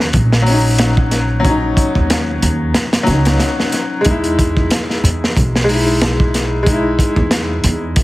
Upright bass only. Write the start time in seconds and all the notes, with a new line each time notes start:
Already playing: D#2
0.14 A#1
1.96 D#2
2.42 D#2
3.08 C#2
4.06 E2
5.04 E2
5.37 B1
7.17 E2
7.64 E2